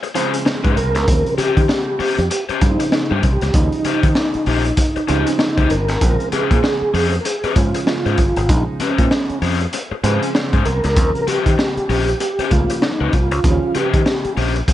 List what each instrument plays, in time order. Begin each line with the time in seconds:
0.03 muted overdriven electric guitar stroke, closed hi-hat
0.15 upright piano C#3 F3 G#3 C4, overdriven electric guitar C#4 G#4 C5, closed hi-hat
0.34 muted overdriven electric guitar stroke, closed hi-hat
0.46 muted overdriven electric guitar stroke, snare
0.64 fingered electric bass G#2, overdriven electric guitar C#4 G#4 C5, kick, closed hi-hat
0.76 fingered electric bass C2, tonewheel organ A#4, muted overdriven electric guitar stroke, closed hi-hat
0.95 fingered electric bass C#2, muted overdriven electric guitar stroke, snare, closed hi-hat
1.07 fingered electric bass D#2, upright piano C#3 F3 G3 C4, kick, closed hi-hat
1.26 closed hi-hat
1.38 overdriven electric guitar C#4 G4 C5, tonewheel organ G4, muted fingered electric bass stroke, closed hi-hat
1.57 fingered electric bass D#3, kick, closed hi-hat
1.69 muted overdriven electric guitar stroke, snare
1.99 overdriven electric guitar C#4 G4 C5, muted fingered electric bass stroke, open hi-hat
2.18 fingered electric bass F2, muted overdriven electric guitar stroke, closed hi-hat
2.30 tonewheel organ G4, muted overdriven electric guitar stroke, closed hi-hat
2.49 overdriven electric guitar C#4 G4 C5, muted fingered electric bass stroke, closed hi-hat
2.61 fingered electric bass G2, upright piano C#3 F3 G3 A#3, muted overdriven electric guitar stroke, kick, closed hi-hat
2.68 upright piano C4, tonewheel organ D#4
2.80 muted overdriven electric guitar stroke, closed hi-hat
2.92 muted overdriven electric guitar stroke, snare
3.11 fingered electric bass G2, overdriven electric guitar C#4 G4 C5, tonewheel organ G4
3.23 fingered electric bass C2, muted overdriven electric guitar stroke, kick, closed hi-hat
3.33 tonewheel organ G4
3.41 fingered electric bass C#2, muted overdriven electric guitar stroke, snare, closed hi-hat
3.54 fingered electric bass D#2, upright piano C#3 F3 G3 D#4, tonewheel organ D#4, kick, closed hi-hat
3.72 closed hi-hat
3.85 overdriven electric guitar C#4 G4 C5, muted fingered electric bass stroke, closed hi-hat
4.03 fingered electric bass D#3, kick, closed hi-hat
4.15 muted overdriven electric guitar stroke, snare
4.34 muted fingered electric bass stroke, closed hi-hat
4.46 fingered electric bass A#1, overdriven electric guitar C#4 G4 C5, open hi-hat
4.65 muted overdriven electric guitar stroke, closed hi-hat
4.77 muted overdriven electric guitar stroke, kick, closed hi-hat
4.96 muted overdriven electric guitar stroke, muted fingered electric bass stroke, closed hi-hat
5.08 fingered electric bass C#2, upright piano C#3 F3 G3 C4, overdriven electric guitar C#4 G4 C5, closed hi-hat
5.27 muted overdriven electric guitar stroke, closed hi-hat
5.39 muted overdriven electric guitar stroke, snare
5.58 fingered electric bass C#2, overdriven electric guitar C#4 G4 C5, kick, closed hi-hat
5.70 fingered electric bass G1, tonewheel organ A#4, muted overdriven electric guitar stroke, closed hi-hat
5.88 fingered electric bass G#1, muted overdriven electric guitar stroke, snare, closed hi-hat
6.01 fingered electric bass A#1, upright piano C#3 F3 G#3 C4, kick, closed hi-hat
6.20 closed hi-hat
6.32 overdriven electric guitar C#4 G#4 C5, tonewheel organ G#4, muted fingered electric bass stroke, closed hi-hat
6.51 fingered electric bass A#2, kick, closed hi-hat
6.63 muted overdriven electric guitar stroke, snare
6.82 muted fingered electric bass stroke
6.94 fingered electric bass F2, overdriven electric guitar C#4 G#4 C5, open hi-hat
7.13 muted overdriven electric guitar stroke, closed hi-hat
7.21 tonewheel organ A#4
7.25 tonewheel organ G#4, muted overdriven electric guitar stroke, closed hi-hat
7.44 overdriven electric guitar C#4 G#4 C5, muted fingered electric bass stroke, closed hi-hat
7.56 fingered electric bass G#2, upright piano C#3 F3 G#3 C#4, tonewheel organ F4, muted overdriven electric guitar stroke, kick, closed hi-hat
7.74 muted overdriven electric guitar stroke, closed hi-hat
7.87 tonewheel organ F4, muted overdriven electric guitar stroke, snare
8.06 fingered electric bass G#2, overdriven electric guitar C#4 G#4 C5, closed hi-hat
8.18 fingered electric bass G1, muted overdriven electric guitar stroke, kick, closed hi-hat
8.36 fingered electric bass G#1, muted overdriven electric guitar stroke, closed hi-hat
8.49 fingered electric bass A#1, upright piano C#3 F3 G#3 D#4, tonewheel organ D#4, kick, closed hi-hat
8.80 overdriven electric guitar C#4 G#4 C5, tonewheel organ C#4, muted fingered electric bass stroke, closed hi-hat
8.98 fingered electric bass A#2, kick, closed hi-hat
9.11 muted overdriven electric guitar stroke, snare
9.29 muted fingered electric bass stroke, closed hi-hat
9.42 fingered electric bass F2, overdriven electric guitar C#4 G#4 C5, open hi-hat
9.60 muted overdriven electric guitar stroke, closed hi-hat
9.73 muted overdriven electric guitar stroke, closed hi-hat
9.91 muted fingered electric bass stroke, muted overdriven electric guitar stroke
10.03 fingered electric bass G#2, upright piano C#3 F3 G#3 C4, overdriven electric guitar C#4 G#4 C5, closed hi-hat
10.22 muted overdriven electric guitar stroke, closed hi-hat
10.35 muted overdriven electric guitar stroke, snare
10.53 fingered electric bass G#2, overdriven electric guitar C#4 G#4 C5, kick, closed hi-hat
10.65 fingered electric bass C2, tonewheel organ A#4, muted overdriven electric guitar stroke, closed hi-hat
10.84 fingered electric bass C#2, muted overdriven electric guitar stroke, snare, closed hi-hat
10.96 fingered electric bass D#2, upright piano C#3 F3 G3 C4, kick, closed hi-hat
11.15 closed hi-hat
11.22 tonewheel organ A#4
11.27 overdriven electric guitar C#4 G4 C5, tonewheel organ G4, muted fingered electric bass stroke, closed hi-hat
11.46 fingered electric bass D#3, kick, closed hi-hat
11.58 muted overdriven electric guitar stroke, snare
11.77 muted fingered electric bass stroke, closed hi-hat
11.89 fingered electric bass A#1, overdriven electric guitar C#4 G4 C5, open hi-hat
12.08 muted overdriven electric guitar stroke, closed hi-hat
12.20 tonewheel organ G4, muted overdriven electric guitar stroke, closed hi-hat
12.39 overdriven electric guitar C#4 G4 C5, muted fingered electric bass stroke, closed hi-hat
12.46 tonewheel organ G4
12.51 fingered electric bass C#2, upright piano C#3 F3 G3 A3, tonewheel organ F4, muted overdriven electric guitar stroke, kick, closed hi-hat
12.58 upright piano A#3
12.70 muted overdriven electric guitar stroke, closed hi-hat
12.82 tonewheel organ D#4, muted overdriven electric guitar stroke, snare
13.01 fingered electric bass C#2, overdriven electric guitar C#4 G4 C5
13.13 fingered electric bass C2, tonewheel organ F4, muted overdriven electric guitar stroke, kick, closed hi-hat
13.31 fingered electric bass C#2, muted overdriven electric guitar stroke, closed hi-hat
13.44 fingered electric bass D#2, upright piano C#3 F3 G3 C4, kick, closed hi-hat
13.51 upright piano C#4
13.75 overdriven electric guitar C#4 G4 C5, tonewheel organ G4, muted fingered electric bass stroke, closed hi-hat
13.94 fingered electric bass D#3, kick, closed hi-hat
14.06 muted overdriven electric guitar stroke, snare
14.25 muted fingered electric bass stroke, closed hi-hat
14.37 fingered electric bass A#1, overdriven electric guitar C#4 G4 C5, open hi-hat
14.56 muted overdriven electric guitar stroke, closed hi-hat
14.68 muted overdriven electric guitar stroke, kick, closed hi-hat